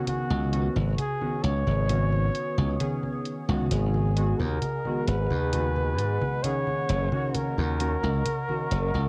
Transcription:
Already playing: D#3 B3 C#4 F#4 D#5 F#5
0.07 F#4 B4 C#6, muted slap bass stroke, closed hi-hat, high conga
0.30 C#2, high conga
0.52 D#3 B3 C#4 F#4, closed hi-hat
0.76 G#1, high conga
0.98 G#4, closed hi-hat, high conga
1.21 D#3 B3 C#4 F#4, high conga
1.43 C#2 C#5, closed hi-hat
1.67 G#1, high conga
1.89 D#3 B3 C#4 F#4 D#6, closed hi-hat, high conga
2.12 high conga
2.35 closed hi-hat
2.58 C#2, high conga
2.79 D#3 B3 C#4 G#4, closed hi-hat, high conga
3.03 high conga
3.25 closed hi-hat
3.48 C#2 D#3 G#3 B3 F#4, high conga
3.71 G#1 G#4 D#5 F#5 G#5, closed hi-hat, high conga
3.94 high conga
4.16 D#3 G#3 B3 F#4, closed hi-hat
4.38 D#2 A#4, high conga
4.62 closed hi-hat, high conga
4.85 D#3 G#3 B3 F#4, high conga
5.07 G#1 B4, closed hi-hat
5.30 D#2, high conga
5.52 D#3 G#3 B3 F#4, closed hi-hat, high conga
5.76 high conga
5.98 G#2, closed hi-hat
6.22 high conga
6.43 D#3 A#3 C#4 G#4 C#5, closed hi-hat, high conga
6.67 high conga
6.89 F#1 A#4 D#5 C#6, closed hi-hat
7.12 D#3 A#3 C#4 F#4, high conga
7.34 A#4, muted slap bass stroke, closed hi-hat, high conga
7.58 D#2, high conga
7.80 D#3 A#3 C#4 F#4, closed hi-hat
8.03 C#2, high conga
8.26 closed hi-hat, high conga
8.48 D#3 A#3 C#4 F#4, high conga
8.71 F#1, closed hi-hat
8.94 C#2, high conga

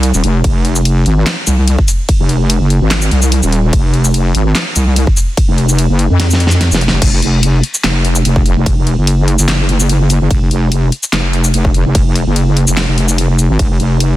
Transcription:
Already playing: C2
0.03 closed hi-hat, ride
0.14 D#1, shaker
0.24 F1, closed hi-hat
0.44 F1, kick, closed hi-hat, ride
0.65 closed hi-hat
0.76 shaker
0.85 closed hi-hat, ride
1.06 G#1, closed hi-hat
1.26 snare, clap, closed hi-hat, ride
1.47 C2, closed hi-hat, shaker
1.68 closed hi-hat, ride
1.78 kick
1.88 closed hi-hat, shaker
2.09 kick, closed hi-hat, ride
2.20 F1
2.29 closed hi-hat
2.50 closed hi-hat, ride
2.61 F#1
2.70 closed hi-hat
2.81 G#1
2.91 snare, clap, closed hi-hat, ride
3.02 shaker
3.11 C2, closed hi-hat
3.22 shaker
3.32 closed hi-hat, ride
3.43 D#1, shaker
3.52 closed hi-hat
3.73 F1, kick, closed hi-hat, ride
3.94 closed hi-hat
4.04 shaker
4.14 closed hi-hat, ride
4.35 G#1, closed hi-hat
4.55 snare, clap, closed hi-hat, ride
4.76 C2, closed hi-hat, shaker
4.96 closed hi-hat, ride
5.07 kick
5.17 closed hi-hat, shaker
5.37 kick, closed hi-hat, ride
5.48 F1
5.58 closed hi-hat
5.69 shaker
5.79 closed hi-hat, ride
5.89 F#1
5.99 closed hi-hat
6.10 F2
6.20 snare, closed hi-hat, ride
6.31 snare, shaker
6.40 closed hi-hat
6.47 snare
6.51 shaker
6.61 snare, closed hi-hat, ride
6.72 F1, snare, shaker
6.81 closed hi-hat
6.88 snare
6.92 F1
7.02 F1, kick, closed hi-hat, crash, ride
7.22 F1, closed hi-hat
7.43 closed hi-hat, ride
7.63 closed hi-hat
7.74 shaker
7.84 F1, snare, clap, closed hi-hat, ride
8.05 closed hi-hat
8.15 shaker
8.25 F1, closed hi-hat, ride
8.36 kick
8.46 closed hi-hat
8.57 F1
8.66 kick, closed hi-hat, ride
8.87 closed hi-hat
8.98 F#1
9.07 closed hi-hat, ride
9.28 closed hi-hat
9.39 F#1, shaker
9.48 snare, clap, closed hi-hat, ride
9.69 closed hi-hat
9.80 shaker
9.89 closed hi-hat, ride
10.10 closed hi-hat, shaker
10.21 F#1
10.31 F1, kick, closed hi-hat, ride
10.51 F1, closed hi-hat
10.72 closed hi-hat, ride
10.92 closed hi-hat
11.03 shaker
11.13 F1, snare, clap, closed hi-hat, ride
11.33 closed hi-hat
11.44 shaker
11.54 F1, closed hi-hat, ride
11.65 kick
11.74 closed hi-hat
11.85 F1
11.95 kick, closed hi-hat, ride
12.15 closed hi-hat
12.26 F#1
12.36 closed hi-hat, ride
12.57 closed hi-hat
12.68 F1, shaker
12.77 snare, clap, closed hi-hat, ride
12.88 F1
12.98 closed hi-hat
13.09 shaker
13.18 closed hi-hat, ride
13.39 closed hi-hat, shaker
13.50 G#1
13.59 F1, kick, closed hi-hat, ride
13.80 F1, closed hi-hat
14.00 closed hi-hat, ride

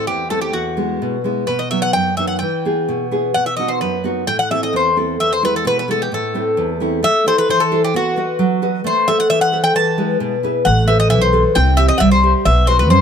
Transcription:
Already playing: A3 C4 E4
0.07 E2 G4
0.30 A3 C4 E4 A4
0.41 G4
0.53 E2 F#4
0.77 G#3 B3 E4
1.02 B2
1.24 G#3 B3 E4
1.47 B2 B4
1.59 D#5
1.71 F#3 B3 D#4 E5
1.82 F#5
1.93 F#2 G5
2.17 F#3 B3 D#4 E5
2.27 F#5
2.39 E3 G5
2.65 B3 E4 G#4
2.88 B2
3.11 B3 E4 G#4
3.34 B2 F#5
3.46 E5
3.57 B3 D#4 F#4 D#5
3.68 C5
3.81 F#2 B4
4.04 B3 D#4 F#4
4.27 A2 G5
4.39 F#5
4.50 C4 E4 A4 E5
4.63 D#5
4.73 E2 C5
4.96 C4 E4 A4
5.20 E2 E5
5.33 C5
5.43 G#3 B3 E4 B4
5.56 A4
5.65 B2 B4
5.79 B4
5.88 G#3 B3 E4 A4
6.02 G4
6.12 A2 A4
6.34 A3 C4 E4
6.57 E2
6.80 A3 C4 E4
7.03 A3 E5
7.26 E4 A4 C5
7.38 B4
7.49 E3 C5
7.60 A4
7.72 E4 A4 C5
7.84 G4
7.94 B3 F#4
8.16 F#4 B4 D#5
8.39 F#3
8.62 F#4 B4 D#5
8.84 A3 C5
9.08 A4 C5 E5
9.20 F#5
9.30 E3 E5
9.41 F#5
9.52 A4 C5 E5
9.64 G5
9.75 E3 A5
9.98 G#3 E4 B4
10.20 B2
10.43 E4 G#4 B4
10.65 A1 A3 F#5
10.88 A4 B4 C5 E5
11.00 D#5
11.10 B1 E3 E5
11.21 C5
11.33 A4 B4 C5
11.55 C2 C4 G5
11.77 G4 C5 E5
11.88 D#5
11.98 C2 G3 E5 F#5
12.11 C5
12.23 G4 C5 E5
12.45 B1 B3 E5
12.67 F#4 B4 C5 D#5
12.79 B4
12.90 F#2 F#3 C5

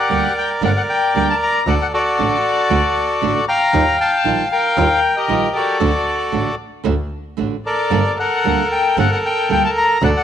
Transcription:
Already playing: G4 A#4 D5 F#5
0.09 D2 D3 G3 A#3 D4 G4
0.38 G5
0.62 G1 D3 G3 A#3 D4 G4 A#4 D5 F#5
0.76 F#5
0.89 G5
1.15 D2 D3 G3 A#3 D4 G4 G5
1.29 A5
1.42 A#5
1.66 D2 D3 A3 D4 F#4 A4 D5 F#5
1.81 F#5
1.93 F#4 A4 D5
2.18 A1 D3 A3 D4 F#4
2.70 D2 D3 A3 D4 F#4
3.22 A1 D3 A3 D4 F#4
3.48 F5 G5 A#5
3.73 D#2 D#3 G3 D#4 F4
4.01 F5 A5
4.24 A#1 D#3 G3 D#4 F4
4.52 A#4 G5
4.77 D#2 D#3 G3 D#4 F4
5.16 G4 A#4 D#5
5.28 A#1 D#3 G3 D#4 F4
5.55 F#4 A4 D5
5.80 D2 D3 A3 D4 F#4
6.32 A1 D3 A3 D4 F#4
6.84 D2 D3 A3 D4 F#4
7.37 A1 D3 A3 D4 F#4
7.66 A4 A#4 D5
7.90 G1 D3 G3 A#3 D4 A4
8.19 A4 A#4 F#5
8.45 D2 D3 G3 A#3 D4 A4
8.72 G5
8.97 G1 D3 G3 A#3 D4 A4 A#4 F#5
9.12 F#5
9.25 G5
9.49 D2 D3 G3 A#3 D4 A4 G5
9.65 A5
9.77 A#5
10.01 D2 D3 A3 D4 F#4 A4 D5 F#5
10.17 F#5

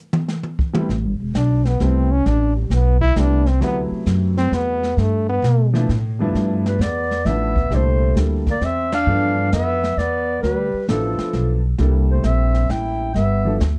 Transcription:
0.13 mid tom
0.28 snare
0.43 mid tom
0.59 kick
0.73 G3 A3 B3 C4 E4, mid tom
0.89 A1, brush sweep, snare
1.05 G1
1.20 E1
1.34 B1 D4, snare, hi-hat pedal
1.65 B3, snare
1.80 C2 G3 A3 B3 C4 E4, snare
2.12 C#4
2.26 A1 D4, brush sweep, snare
2.57 G3
2.70 B1 B3, snare, hi-hat pedal
3.01 E4, kick
3.16 C2 G3 A3 B3 C4 D4 E4, snare, hi-hat pedal
3.46 C4, snare
3.61 D2 C3 F#3 A3 B3 E4, brush sweep, snare
3.91 muted upright bass stroke
4.06 F#2, snare, hi-hat pedal
4.37 C4, snare
4.51 E2 B3, snare
4.83 snare
4.97 G2 A3, brush sweep, snare
5.30 B3
5.42 B2, snare, hi-hat pedal
5.73 F3 A3 B3 D4 E4, snare
5.89 A2, snare
6.19 G2 F3 A3 B3 D4 E4
6.34 G2, brush sweep, snare
6.65 G3 B4, snare
6.79 E2 B3 D5, snare, hi-hat pedal
7.11 snare
7.25 A1 F3 A3 B3 D4 E4 E5, snare
7.56 kick
7.70 C2 A#2 G3 A3 D4 E4 A4, brush sweep, snare
7.75 C5
8.15 D2 G3 A#3 D4 E4 A4, snare, hi-hat pedal
8.47 A#3, kick, snare
8.51 D5
8.61 E2 C4, snare
8.65 E5
8.92 D4 F5, snare, ride
9.07 G2 E3 F3 B3 D4 A4, brush sweep
9.52 F2 B3 E5, snare, hi-hat pedal
9.84 snare
9.97 E2 B3 D5, snare
10.42 D2 G3 B4, brush sweep, snare
10.73 muted upright bass stroke
10.88 A1 F3 B3 D4 E4 A4, snare, hi-hat pedal
11.19 muted upright bass stroke, snare
11.33 B1, snare
11.78 C2 G3 A#3 D4 E4 A4, brush sweep, snare
12.11 A3 C5
12.23 A#1 C4 E5, snare, hi-hat pedal
12.54 snare
12.69 A1 E4 G5, snare
13.14 G1 B3 E5, brush sweep, snare
13.45 F3 B3 D4 E4 A4
13.60 D2, snare, hi-hat pedal

